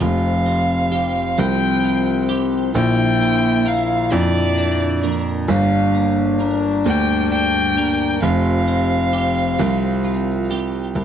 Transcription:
Already playing: A#3 D4 A#4
0.00 F1 F3 C4 F4 G4 F5
0.46 C4
0.92 F3 C4 F4 G4
1.37 C2 F3 C4 F4 G4 G5
1.84 F4
2.29 C4 F4 G4
2.74 A#1 A#2 D3 F3 A#3 D4 E4 A#4 G5
3.21 A#3
3.65 F3 A#3 D4 A#4 F5
4.11 F2 A#2 D3 F3 A#3 D4 A#4 D5
4.58 D4
5.02 F3 A#3 D4 A#4
5.47 G1 G2 D3 G3 A#3 D4 A#4 F5
5.95 A#3
6.39 G3 A#3 D4 A#4
6.84 D2 G2 D3 G3 A#3 D4 A#4 G5
7.32 D4 G5
7.75 G3 A#3 D4 A#4
8.21 F1 F3 C4 F4 G4 F5
8.68 C4
9.13 F3 C4 F4 G4
9.58 C2 F3 C4 F4 G4
10.05 F4
10.49 C4 F4 G4
10.95 C2 C3 G4

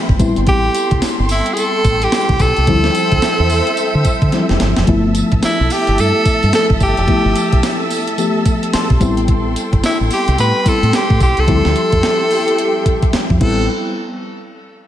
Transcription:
Already playing: F3 A3 B3 A4 E5 G5 B5
0.09 G1, kick
0.19 A1 G3 B3 C4 E4 A4 G5 C6, kick, closed hi-hat, tambourine
0.36 G1, closed hi-hat
0.47 A1 G4, kick, closed hi-hat
0.75 closed hi-hat, tambourine
0.91 C2, kick, closed hi-hat
1.02 muted fingered electric bass stroke, snare, closed hi-hat, tambourine
1.20 G1
1.29 E4, open hi-hat, tambourine
1.46 closed hi-hat
1.54 G#4, closed hi-hat, tambourine
1.59 A4
1.85 A1, kick, closed hi-hat, tambourine
2.02 G4, closed hi-hat
2.12 snare, closed hi-hat, tambourine
2.29 C2, kick
2.39 B1 A4, kick, closed hi-hat, tambourine
2.57 C2, closed hi-hat
2.67 D2 F3 G3 C4 E4 C5 E5 E6, kick, closed hi-hat
2.84 snare
2.95 closed hi-hat, tambourine
3.12 D2, kick, closed hi-hat
3.22 muted fingered electric bass stroke, snare, closed hi-hat, tambourine
3.40 E2
3.50 open hi-hat, tambourine
3.67 closed hi-hat
3.77 closed hi-hat, tambourine
3.95 D3
4.05 kick, closed hi-hat, tambourine
4.22 D3, kick, closed hi-hat
4.32 E3 G3 C4 E4, snare, closed hi-hat
4.39 F3
4.49 F1, snare
4.60 G1, snare, closed hi-hat
4.76 F1, snare, closed hi-hat
4.87 G1 F3 A3 B3 E4 A4 E5 A5 E6, kick, closed hi-hat
5.15 closed hi-hat, tambourine
5.32 A1, kick, closed hi-hat
5.43 E4, muted fingered electric bass stroke, snare, closed hi-hat, tambourine
5.61 B1
5.70 G4, open hi-hat, tambourine
5.87 G1, closed hi-hat
5.98 G2 A4, closed hi-hat, tambourine
6.26 muted fingered electric bass stroke, kick, closed hi-hat, tambourine
6.43 G2, closed hi-hat
6.53 A4, snare, closed hi-hat, tambourine
6.70 G1, kick
6.81 G1 G4, kick, closed hi-hat, tambourine
6.97 F1, closed hi-hat
7.07 F3 A3 B3 E4, kick, closed hi-hat
7.25 G1
7.36 closed hi-hat, tambourine
7.53 B1, kick, closed hi-hat
7.63 snare, closed hi-hat, tambourine
7.90 open hi-hat, tambourine
8.07 closed hi-hat
8.18 F3 A3 B3 G4, closed hi-hat, tambourine
8.46 kick, closed hi-hat, tambourine
8.63 closed hi-hat
8.73 C6, muted fingered electric bass stroke, snare, closed hi-hat, tambourine
8.90 B1, kick
9.00 A1 G3 B3 C4 E4 G5 C6, kick, closed hi-hat, tambourine
9.17 closed hi-hat
9.28 kick, closed hi-hat
9.56 closed hi-hat, tambourine
9.73 G1, kick, closed hi-hat
9.84 E4, muted fingered electric bass stroke, snare, closed hi-hat, tambourine
10.01 A1
10.11 G4, open hi-hat, tambourine
10.28 C2, closed hi-hat
10.38 A2 B4, closed hi-hat, tambourine
10.65 G3 B3 C4 E4 A4, muted fingered electric bass stroke, kick, closed hi-hat, tambourine
10.83 A2, closed hi-hat
10.93 G4, snare, closed hi-hat, tambourine
11.10 A2, kick
11.20 B1 G4, kick, closed hi-hat, tambourine
11.37 C2 A4, closed hi-hat
11.47 D2 F3 G3 C4 E4 G4 E5 G5, kick, closed hi-hat
11.65 D2, snare
11.76 closed hi-hat
11.92 F2, kick, closed hi-hat
12.03 snare, closed hi-hat
12.31 open hi-hat
12.48 closed hi-hat
12.58 closed hi-hat
12.86 kick, closed hi-hat
13.03 kick, closed hi-hat
13.13 muted fingered electric bass stroke, snare, closed hi-hat
13.30 F2, kick
13.41 A1 G3 B3 C4 E4 A4 B4 G5, kick, crash

